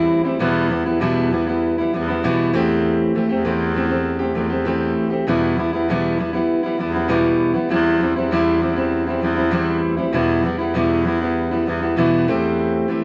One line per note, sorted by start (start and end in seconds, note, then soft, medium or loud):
0.00 0.25 E2 medium
0.00 0.25 E3 medium
0.00 0.24 G3 loud
0.00 0.23 C4 medium
0.00 0.23 E4 loud
0.10 0.38 D2 medium
0.24 0.39 E3 soft
0.24 0.39 G3 soft
0.24 0.40 C4 medium
0.24 0.40 E4 medium
0.39 0.70 E2 medium
0.39 0.82 E2 loud
0.39 0.70 B2 medium
0.39 0.67 E3 medium
0.39 0.69 G3 loud
0.39 0.70 B3 loud
0.39 0.70 E4 medium
0.68 0.85 E3 medium
0.68 0.86 G3 medium
0.68 0.85 B3 medium
0.68 0.84 E4 medium
0.86 1.88 E2 medium
0.86 1.00 E3 soft
0.86 1.00 G3 soft
0.86 1.01 B3 medium
0.86 1.01 E4 medium
1.00 1.31 E2 medium
1.00 1.31 B2 medium
1.00 1.30 E3 medium
1.00 1.31 G3 medium
1.00 1.31 B3 medium
1.00 1.32 E4 medium
1.31 1.46 E3 medium
1.31 1.47 G3 medium
1.31 1.47 B3 medium
1.31 1.46 E4 medium
1.47 1.79 E3 soft
1.47 1.78 G3 medium
1.47 1.78 B3 medium
1.47 1.77 E4 medium
1.78 1.92 E3 soft
1.78 1.93 G3 soft
1.78 1.93 B3 medium
1.78 1.93 E4 medium
1.93 2.24 E2 medium
1.93 2.08 E3 medium
1.93 2.08 G3 medium
1.93 2.08 B3 medium
1.93 2.07 E4 medium
2.08 2.23 E3 soft
2.08 2.23 G3 soft
2.08 2.24 B3 medium
2.08 2.23 E4 medium
2.23 2.53 E2 medium
2.23 2.54 B2 medium
2.23 2.52 E3 loud
2.23 2.54 G3 loud
2.23 2.54 B3 loud
2.23 2.54 E4 loud
2.53 3.10 E2 medium
2.53 3.14 E3 medium
2.53 3.14 A3 medium
2.53 3.14 C4 medium
2.53 3.17 G4 loud
3.15 3.30 E3 medium
3.15 3.30 A3 medium
3.15 3.29 C4 medium
3.15 3.28 G4 medium
3.29 4.32 E2 loud
3.29 3.44 A3 soft
3.29 3.44 C4 medium
3.29 3.44 G4 medium
3.45 3.73 E3 medium
3.45 3.74 A3 medium
3.45 3.75 C4 medium
3.45 3.76 G4 medium
3.75 3.90 E3 medium
3.75 3.90 A3 medium
3.75 3.89 C4 medium
3.75 3.87 G4 medium
3.88 4.21 A3 soft
3.88 4.19 C4 medium
3.88 4.18 G4 soft
4.19 4.34 A3 soft
4.19 4.35 C4 medium
4.19 4.35 G4 medium
4.35 4.92 E2 medium
4.35 4.50 E3 medium
4.35 4.51 A3 medium
4.35 4.50 C4 medium
4.35 4.49 G4 medium
4.50 4.64 A3 soft
4.50 4.65 C4 soft
4.50 4.66 G4 medium
4.65 5.11 E3 medium
4.65 5.11 A3 medium
4.65 5.10 C4 medium
4.65 5.09 G4 medium
4.96 5.24 D2 medium
5.10 5.27 A3 soft
5.10 5.27 C4 soft
5.10 5.26 G4 medium
5.26 5.68 E2 loud
5.26 5.57 E2 medium
5.26 5.57 B2 medium
5.26 5.55 E3 medium
5.26 5.56 G3 medium
5.26 5.57 B3 medium
5.26 5.58 E4 loud
5.56 5.72 E3 medium
5.56 5.73 G3 medium
5.56 5.73 B3 medium
5.56 5.72 E4 medium
5.72 6.47 E2 medium
5.72 5.89 G3 soft
5.72 5.89 B3 medium
5.72 5.88 E4 medium
5.76 5.89 E3 medium
5.89 6.19 E2 medium
5.89 6.19 B2 medium
5.89 6.17 E3 medium
5.89 6.18 G3 medium
5.89 6.19 B3 medium
5.89 6.19 E4 loud
6.18 6.33 E3 medium
6.18 6.34 G3 medium
6.18 6.33 B3 medium
6.18 6.32 E4 medium
6.33 6.65 E3 soft
6.33 6.64 G3 soft
6.33 6.63 B3 medium
6.33 6.62 E4 medium
6.63 6.76 E3 soft
6.63 6.78 G3 medium
6.63 6.79 B3 medium
6.63 6.78 E4 medium
6.78 7.36 E2 loud
6.78 6.93 E3 medium
6.78 6.94 G3 medium
6.78 6.94 B3 medium
6.78 6.92 E4 medium
6.94 7.08 E3 soft
6.94 7.08 G3 medium
6.94 7.08 B3 medium
6.94 7.09 E4 medium
7.08 7.54 E2 medium
7.08 7.55 B2 loud
7.08 7.55 E3 medium
7.08 7.55 G3 medium
7.08 7.54 B3 loud
7.08 7.53 E4 medium
7.54 7.69 E3 soft
7.54 7.69 G3 soft
7.54 7.70 B3 medium
7.54 7.70 E4 medium
7.69 8.00 E2 medium
7.69 8.12 E2 loud
7.69 7.98 E3 medium
7.69 8.00 G3 medium
7.69 8.01 C4 medium
7.69 8.01 E4 medium
7.99 8.15 E3 medium
7.99 8.16 G3 medium
7.99 8.15 C4 medium
7.99 8.15 E4 medium
8.15 9.18 E2 medium
8.15 8.31 E3 medium
8.15 8.31 G3 medium
8.15 8.31 C4 medium
8.15 8.31 E4 medium
8.31 8.61 E2 medium
8.31 8.59 E3 medium
8.31 8.60 G3 medium
8.31 8.61 C4 medium
8.31 8.62 E4 loud
8.60 8.76 E3 medium
8.60 8.76 G3 medium
8.60 8.76 C4 medium
8.60 8.75 E4 medium
8.76 9.08 E3 soft
8.76 9.08 G3 soft
8.76 9.07 C4 medium
8.76 9.06 E4 medium
9.07 9.20 E3 soft
9.07 9.21 G3 soft
9.07 9.22 C4 medium
9.07 9.22 E4 medium
9.21 9.79 E2 loud
9.21 9.37 E3 medium
9.21 9.37 G3 medium
9.21 9.36 C4 medium
9.21 9.34 E4 medium
9.36 9.50 E3 soft
9.36 9.50 G3 medium
9.36 9.51 C4 medium
9.36 9.51 E4 medium
9.51 9.97 E2 medium
9.51 9.98 E3 medium
9.51 9.97 G3 medium
9.51 9.97 C4 medium
9.51 9.96 E4 medium
9.83 10.11 D2 medium
9.97 10.12 E3 soft
9.97 10.13 G3 medium
9.97 10.13 C4 medium
9.97 10.13 E4 medium
10.12 10.43 E2 medium
10.12 10.55 E2 loud
10.12 10.44 B2 medium
10.12 10.42 E3 medium
10.12 10.43 G3 medium
10.12 10.44 B3 medium
10.12 10.45 E4 medium
10.43 10.59 E3 medium
10.43 10.59 G3 medium
10.43 10.58 B3 medium
10.43 10.57 E4 medium
10.58 11.61 E2 loud
10.58 10.74 E3 medium
10.58 10.74 G3 medium
10.58 10.74 B3 medium
10.58 10.74 E4 medium
10.74 11.05 E2 medium
10.74 11.05 B2 medium
10.74 11.04 E3 medium
10.74 11.05 G3 medium
10.74 11.05 B3 medium
10.74 11.06 E4 medium
11.05 11.20 E3 medium
11.05 11.21 G3 medium
11.05 11.21 B3 medium
11.05 11.20 E4 medium
11.21 11.52 E3 soft
11.21 11.52 G3 soft
11.21 11.51 B3 medium
11.21 11.50 E4 medium
11.51 11.65 E3 soft
11.51 11.66 G3 medium
11.51 11.67 B3 soft
11.51 11.66 E4 medium
11.66 11.97 E2 medium
11.66 11.81 E3 medium
11.66 11.82 G3 medium
11.66 11.81 B3 medium
11.66 11.80 E4 medium
11.81 11.96 E3 soft
11.81 11.97 G3 soft
11.81 11.97 B3 medium
11.81 11.96 E4 medium
11.96 12.27 E2 medium
11.96 12.27 B2 medium
11.96 12.26 E3 medium
11.96 12.28 G3 medium
11.96 12.27 B3 medium
11.96 12.28 E4 loud
12.27 12.83 E2 medium
12.27 12.88 E3 medium
12.27 12.88 A3 loud
12.27 12.88 C4 medium
12.27 12.91 G4 medium
12.88 13.03 E3 medium
12.88 13.03 A3 medium
12.88 13.03 C4 medium
12.88 13.02 G4 medium